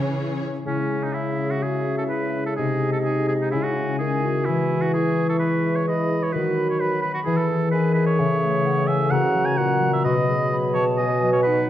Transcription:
0.00 0.46 C#3 soft
0.00 0.65 C#3 soft
0.00 0.39 E3 soft
0.00 0.42 E3 soft
0.00 1.61 G#3 soft
0.00 0.39 C#4 soft
0.00 0.40 C#4 soft
0.00 0.43 C#4 soft
0.00 0.15 E4 soft
0.00 0.43 G#4 soft
0.00 0.38 C#5 soft
0.00 0.41 C#5 soft
0.00 0.44 C#5 soft
0.16 1.14 E4 soft
0.42 0.89 C#4 soft
0.63 2.54 C#3 soft
0.63 2.60 C#3 soft
0.63 4.42 G#3 soft
0.63 1.05 C#4 medium
0.63 2.53 E4 soft
0.63 1.11 E4 soft
0.63 1.17 G#5 soft
0.90 1.37 C#4 soft
1.04 1.15 D#4 soft
1.14 1.52 E4 medium
1.14 2.09 E4 soft
1.14 1.63 G#4 soft
1.14 2.57 E5 soft
1.38 1.85 C#4 soft
1.51 1.64 F#4 soft
1.62 5.52 G#3 soft
1.62 2.11 F#4 soft
1.62 1.97 G#4 medium
1.87 2.33 C#4 soft
1.98 2.03 A4 soft
2.09 2.59 E4 soft
2.09 2.60 E4 soft
2.09 2.45 B4 medium
2.35 2.60 C#4 soft
2.46 2.52 A4 soft
2.56 3.54 C3 soft
2.56 3.55 C3 soft
2.56 3.53 D#4 soft
2.56 3.54 D#4 soft
2.56 2.92 G#4 medium
2.56 3.54 D#5 soft
2.82 3.29 D#4 soft
2.92 2.98 A4 medium
3.04 3.55 C4 soft
3.04 3.28 G#4 medium
3.28 3.55 D#4 soft
3.28 3.34 G#4 medium
3.41 3.50 D#4 soft
3.51 3.99 C#3 soft
3.51 4.49 C#3 soft
3.51 4.00 C#4 soft
3.51 3.65 E4 medium
3.51 6.34 E4 soft
3.51 4.46 G#5 soft
3.63 3.98 F#4 medium
3.78 4.23 C#4 soft
3.99 4.50 D#3 soft
3.99 4.26 C#4 soft
3.99 4.70 E4 soft
3.99 4.47 G#4 medium
4.24 4.49 C#4 soft
4.24 4.97 F#4 soft
4.45 6.36 E3 soft
4.45 6.34 E3 medium
4.45 6.30 G#3 soft
4.45 4.83 E4 medium
4.45 4.96 G#5 soft
4.71 5.17 E4 soft
4.82 4.93 F#4 medium
4.93 5.90 E4 soft
4.93 5.28 G#4 medium
4.93 5.87 G#4 soft
4.93 5.91 C#6 soft
5.18 5.64 E4 soft
5.29 5.34 A4 medium
5.39 6.57 B3 soft
5.39 5.77 B4 medium
5.65 6.10 E4 soft
5.76 5.87 C#5 medium
5.87 6.36 G#4 soft
5.87 6.33 G#4 soft
5.87 6.24 D#5 medium
5.87 6.33 B5 soft
6.11 6.36 E4 soft
6.23 6.34 C#5 medium
6.33 6.99 D#3 medium
6.33 7.29 D#3 soft
6.33 7.08 F#3 soft
6.33 7.08 F#4 soft
6.33 6.98 F#4 soft
6.33 6.68 B4 medium
6.33 6.79 B5 soft
6.58 7.03 B3 soft
6.69 6.82 C#5 medium
6.80 7.29 F#4 soft
6.80 7.01 B4 medium
6.80 7.44 B5 soft
7.02 8.22 B3 soft
7.02 7.13 B4 medium
7.14 7.19 F#4 medium
7.25 10.05 E3 soft
7.25 7.73 E3 medium
7.25 8.21 E3 soft
7.25 7.74 E4 soft
7.25 7.39 G#4 medium
7.25 8.17 G#4 soft
7.37 7.71 A4 medium
7.50 7.95 E4 soft
7.71 8.21 D#3 soft
7.71 9.13 G#4 soft
7.71 8.21 G#4 soft
7.71 7.93 B4 medium
7.71 8.21 G#5 soft
7.94 8.64 E4 soft
7.94 8.06 B4 medium
8.06 8.88 C#5 medium
8.18 9.11 C#3 medium
8.18 9.10 C#3 medium
8.18 9.11 A4 soft
8.18 8.67 E5 soft
8.42 8.87 A3 soft
8.66 9.56 E4 soft
8.66 8.90 F#5 medium
8.87 9.12 E5 medium
8.87 9.13 G#5 medium
9.11 10.07 C#3 medium
9.11 9.59 C#3 medium
9.11 10.04 F#4 soft
9.11 10.06 A#4 soft
9.11 9.47 F#5 medium
9.11 10.07 A#5 medium
9.34 9.80 F#3 soft
9.45 9.59 G#5 medium
9.57 10.06 A#2 soft
9.57 10.07 E4 soft
9.57 9.92 F#5 medium
9.81 10.27 F#3 soft
9.93 10.04 E5 medium
10.04 11.70 B2 medium
10.04 11.70 F#3 soft
10.04 10.15 F#4 medium
10.04 11.70 B4 medium
10.04 10.57 D#5 medium
10.04 10.51 B5 medium
10.28 10.74 F#3 soft
10.28 11.01 G#4 medium
10.52 11.44 F#4 soft
10.52 10.76 B5 medium
10.74 11.21 F#3 soft
10.74 10.85 C#5 medium
10.74 10.99 A5 medium
10.97 11.70 B3 soft
10.97 11.48 F#4 medium
10.97 11.32 D#5 medium
10.97 11.46 G#5 medium
11.22 11.68 F#3 soft
11.33 11.42 C#5 medium
11.43 11.70 F#4 soft
11.43 11.67 B4 medium
11.43 11.70 F#5 medium
11.47 11.70 D#4 medium

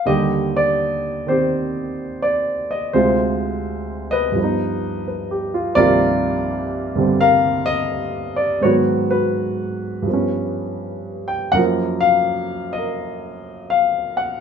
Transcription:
0.05 2.95 D#2 soft
0.05 2.95 D3 soft
0.05 1.25 D#3 soft
0.05 2.95 G3 soft
0.05 1.29 G4 medium
0.05 0.52 D#5 medium
0.57 1.25 D5 medium
1.27 2.94 D#3 soft
1.27 2.95 C4 soft
1.27 2.68 G4 soft
1.27 2.20 C5 medium
2.22 2.67 D5 medium
2.71 2.76 D#5 medium
2.93 4.37 D2 medium
2.93 4.37 C3 soft
2.93 4.37 G#3 soft
2.93 4.33 F4 soft
2.93 3.61 C5 medium
4.11 5.06 B4 medium
4.11 4.78 D#5 medium
4.32 5.75 G2 soft
4.32 5.76 F3 soft
4.39 5.78 B3 soft
4.39 5.80 D#4 medium
5.08 5.50 B4 soft
5.31 5.67 G4 soft
5.54 5.78 F4 medium
5.75 8.62 C2 medium
5.75 6.94 G2 soft
5.75 8.61 D#3 soft
5.75 8.63 F3 soft
5.75 8.64 A#3 medium
5.75 7.16 A#4 medium
5.75 6.91 D5 loud
5.80 8.64 F4 medium
6.95 8.62 G2 soft
6.95 8.63 D3 soft
6.95 8.63 G3 soft
6.95 8.64 C4 soft
7.21 8.59 A#4 medium
7.21 7.69 F5 medium
7.66 8.34 D#5 loud
8.36 8.62 D5 medium
8.61 10.06 G#2 soft
8.61 10.06 D#3 soft
8.61 10.07 F#3 soft
8.61 9.10 F#4 medium
8.61 8.73 C#5 medium
8.66 10.08 B3 medium
9.11 10.03 F#4 soft
9.11 10.03 B4 medium
10.02 11.52 G2 soft
10.06 11.54 F3 soft
10.06 11.56 B3 soft
10.13 11.58 C#4 soft
11.28 11.54 G5 medium
11.52 14.40 F#2 medium
11.52 14.40 F#3 soft
11.52 12.77 A#4 medium
11.52 11.63 F#5 medium
11.57 14.40 F3 medium
11.57 14.40 A#3 soft
12.01 12.78 F5 medium
12.73 13.67 D#5 medium
12.78 14.17 A#4 soft
13.70 14.16 F5 medium
14.17 14.23 F#5 medium

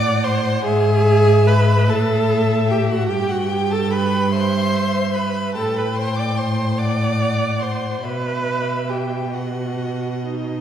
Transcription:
0.00 0.61 A2 medium
0.00 0.26 D5 loud
0.00 0.64 F#5 medium
0.00 0.25 D6 medium
0.24 0.65 C5 loud
0.24 0.63 C6 medium
0.64 1.88 G#2 medium
0.64 1.48 G#4 loud
0.64 1.85 E5 medium
0.64 1.50 G#5 loud
1.47 1.91 B4 loud
1.47 1.91 B5 medium
1.87 3.09 A2 medium
1.87 2.72 A4 loud
1.87 3.07 E5 medium
1.87 2.68 A5 medium
2.69 2.93 G4 loud
2.69 2.89 G5 medium
2.89 3.11 F#4 medium
2.89 3.08 F#5 medium
3.09 5.57 G2 medium
3.09 3.33 G4 loud
3.09 3.31 G5 medium
3.09 4.28 G5 medium
3.29 3.53 F#4 medium
3.29 3.51 F#5 medium
3.50 3.74 G4 loud
3.50 3.72 G5 medium
3.71 3.94 A4 medium
3.71 3.92 A5 medium
3.90 4.33 B4 loud
3.90 4.33 B5 medium
4.31 5.18 C5 loud
4.31 5.50 E5 medium
4.31 5.15 C6 medium
5.14 5.56 B4 medium
5.14 5.54 B5 medium
5.55 8.02 A2 medium
5.55 5.80 A4 loud
5.55 6.74 G5 medium
5.55 5.78 A5 medium
5.77 5.99 B4 medium
5.77 5.97 B5 medium
5.95 6.20 C5 medium
5.95 6.18 C6 medium
6.16 6.40 D5 medium
6.16 6.39 D6 medium
6.37 6.81 C5 medium
6.37 6.80 C6 medium
6.79 7.64 D5 medium
6.79 7.98 F#5 medium
6.79 7.61 D6 medium
7.60 8.06 C5 medium
7.60 8.00 C6 medium
8.01 10.61 B2 medium
8.01 8.91 B4 medium
8.01 9.29 E5 medium
8.01 8.91 B5 medium
8.89 9.35 G4 medium
8.89 9.36 G5 medium
9.34 10.25 F#4 medium
9.34 10.61 D#5 soft
9.34 10.26 F#5 medium
10.25 10.61 D#4 medium
10.25 10.61 D#5 soft

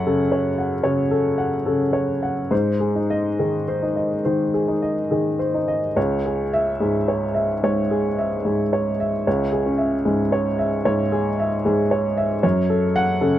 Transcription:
0.00 0.82 F#2 medium
0.00 0.07 A4 soft
0.00 0.32 C#5 soft
0.00 0.21 F#5 medium
0.07 0.69 C#3 soft
0.07 0.48 A4 soft
0.32 0.74 C#5 soft
0.58 1.01 F#5 soft
0.83 1.50 C#3 soft
0.83 1.27 C#5 soft
1.11 1.55 A4 soft
1.38 1.82 F#5 soft
1.66 2.34 C#3 soft
1.66 2.11 A4 soft
1.93 2.39 C#5 soft
2.23 2.51 F#5 soft
2.51 4.20 G#2 soft
2.51 2.98 C5 soft
2.80 3.27 G#4 soft
2.95 3.64 D#4 soft
3.10 3.56 D#5 soft
3.39 4.08 D#3 soft
3.39 3.85 G#4 soft
3.68 4.14 C5 soft
3.82 4.51 D#4 soft
3.96 4.42 D#5 soft
4.25 4.94 D#3 soft
4.25 4.71 C5 soft
4.54 4.99 G#4 soft
4.68 5.36 D#4 soft
4.82 5.28 D#5 soft
5.11 5.80 D#3 soft
5.11 5.57 G#4 soft
5.39 5.85 C5 soft
5.54 5.97 D#4 soft
5.68 5.97 D#5 soft
5.96 7.59 C#2 soft
5.96 6.42 C#5 soft
6.26 6.70 G#4 soft
6.53 6.97 E5 medium
6.80 7.47 G#2 soft
6.80 7.25 G#4 soft
7.08 7.52 C#5 soft
7.35 7.79 E5 soft
7.63 8.29 G#2 soft
7.63 8.07 C#5 soft
7.91 8.35 G#4 soft
8.19 8.62 E5 soft
8.45 9.10 G#2 soft
8.45 8.89 G#4 soft
8.73 9.16 C#5 soft
9.00 9.43 E5 soft
9.27 10.82 C#2 soft
9.27 9.69 C#5 soft
9.52 9.95 G#4 soft
9.66 10.29 C#4 soft
9.78 10.21 E5 soft
10.05 10.69 G#2 soft
10.05 10.48 G#4 soft
10.32 10.75 C#5 soft
10.59 11.01 E5 soft
10.85 11.49 G#2 soft
10.85 11.28 C#5 soft
11.12 11.54 G#4 soft
11.39 11.81 E5 soft
11.65 12.28 G#2 soft
11.65 12.07 G#4 soft
11.91 12.33 C#5 soft
12.17 12.44 E5 soft
12.43 13.39 F#2 medium
12.43 12.85 C#5 soft
12.70 13.11 A4 soft
12.96 13.37 F#5 medium
13.21 13.39 C#3 soft
13.21 13.39 A4 soft

